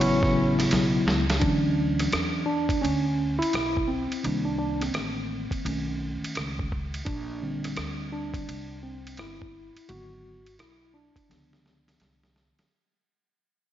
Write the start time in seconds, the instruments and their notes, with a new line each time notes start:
Already playing: tenor saxophone C#4
0.00 upright bass A1, tine electric piano C#3 F#3 B3 E4, ride
0.21 tine electric piano C#3 F#3 B3 E4, kick, snare
0.59 snare, ride
0.71 upright bass B1, snare, hi-hat pedal, ride
1.07 upright bass C#2, snare
1.30 snare, ride
1.40 upright bass D2, tine electric piano E3 F#3 C#4 D4, kick, ride
1.99 cross-stick, ride
2.12 upright bass E2, cross-stick, hi-hat pedal, ride
2.46 tine electric piano D4
2.69 kick, ride
2.82 upright bass D2, tine electric piano C#4, ride
3.39 tine electric piano E4, muted upright bass stroke, ride
3.53 upright bass B1, cross-stick, hi-hat pedal, ride
3.77 kick
3.88 tine electric piano C4
4.12 muted upright bass stroke, ride
4.23 upright bass C2, tine electric piano D#3 A#3 D4, ride
4.45 tine electric piano D4
4.58 tine electric piano D4
4.81 tine electric piano C4, cross-stick, ride
4.94 upright bass A1, cross-stick, hi-hat pedal, ride
5.51 muted upright bass stroke, kick, ride
5.65 upright bass B1, tine electric piano D#3 A3 C#4, ride
6.23 muted upright bass stroke, ride
6.35 upright bass C#2, cross-stick, hi-hat pedal, ride
6.59 kick
6.72 kick
6.94 ride
7.05 upright bass A#1, tine electric piano D4, kick, ride
7.42 tine electric piano D3 G3 C4
7.64 cross-stick, ride
7.76 upright bass D2, cross-stick, hi-hat pedal, ride
8.12 tine electric piano D4
8.34 muted upright bass stroke, kick, ride
8.48 upright bass C2, ride
8.83 tine electric piano C4
9.07 ride
9.17 upright bass G1, tine electric piano E4, cross-stick, hi-hat pedal, ride
9.42 kick
9.76 muted upright bass stroke, ride
9.88 upright bass G#1, tine electric piano D3 F#3 B3 F#4, ride
10.47 ride
10.59 upright bass B1, tine electric piano E4, cross-stick, hi-hat pedal, ride
10.94 tine electric piano D4
11.16 kick, ride
11.29 upright bass C#2, tine electric piano D3 F3 B3, snare, ride
11.53 snare
11.66 snare
11.88 snare, ride
12.00 upright bass C2, snare, hi-hat pedal, ride
12.23 snare
12.36 snare
12.59 snare, ride